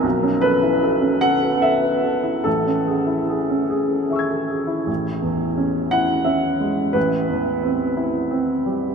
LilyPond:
\new Staff \with { instrumentName = "Grand piano" } { \time 6/8 \key a \major \tempo 4. = 56 << { r8 b'4 fis''8 e''4 | a'4. r8 <e'' cis''' e''' gis'''>4 | r4. fis''8 e''4 | b'2~ b'8 r8 | } \\ { b,,16 cis'16 a'16 e'16 a'16 cis'16 a'16 b'16 a'16 b'16 a'16 e'16 | a,,16 cis'16 gis'16 e'16 gis'16 cis'16 gis'16 a'16 gis'16 a'16 gis'16 e'16 | a,,8 e,8 cis'8 e'8 cis'8 gis8 | a,,8 e,8 c'8 e'8 c'8 g8 | } >> }